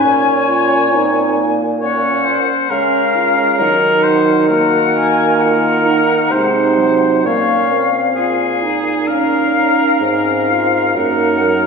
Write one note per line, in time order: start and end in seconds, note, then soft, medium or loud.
0.00 2.41 A#2 medium
0.00 0.91 C#4 medium
0.00 0.47 C#4 medium
0.00 1.55 C#5 loud
0.00 1.53 G#5 medium
0.48 0.95 F4 loud
0.92 1.36 C4 medium
0.92 1.56 D#4 medium
1.37 2.43 A#3 medium
1.80 2.67 C#4 medium
1.80 2.27 C#5 loud
1.80 2.72 F#5 medium
2.25 2.71 C5 medium
2.69 3.62 C#3 loud
2.69 3.61 G#3 medium
2.69 3.17 C#4 medium
2.69 3.57 A#4 medium
2.69 3.60 F5 medium
3.15 3.62 F4 medium
3.58 6.33 D#3 loud
3.58 4.52 F#3 medium
3.58 4.52 D#4 medium
3.58 4.05 A#4 loud
3.58 4.48 F#5 medium
4.03 4.48 C5 loud
4.49 6.31 A#3 loud
4.49 5.41 F#4 medium
4.49 5.37 A#4 medium
4.49 4.97 F#5 medium
4.96 5.42 G#5 loud
5.39 5.87 F4 loud
5.39 6.33 A#4 medium
5.39 7.25 F#5 medium
5.86 6.31 D#4 loud
6.31 7.24 C3 loud
6.31 6.79 G#3 medium
6.31 7.27 D#4 loud
6.31 7.25 C5 medium
6.78 7.28 F#3 medium
7.24 9.70 A#2 medium
7.24 7.73 A#3 loud
7.24 7.91 C#4 medium
7.24 7.90 C#5 medium
7.24 8.79 F5 medium
7.72 8.82 C4 medium
8.16 8.64 F4 medium
8.16 9.09 G#4 medium
8.62 10.04 D#4 medium
9.08 9.51 C#4 medium
9.08 10.94 A#4 medium
9.08 9.97 F5 medium
9.55 10.03 C#4 medium
10.01 10.91 G#2 loud
10.01 10.95 C4 medium
10.01 10.51 C#4 medium
10.01 10.98 F5 medium
10.49 10.95 F4 medium
10.95 11.67 F#2 medium
10.95 11.43 A#3 medium
10.95 11.67 D#4 medium
10.95 11.67 A#4 medium
10.95 11.67 F#5 medium
11.41 11.67 F#3 medium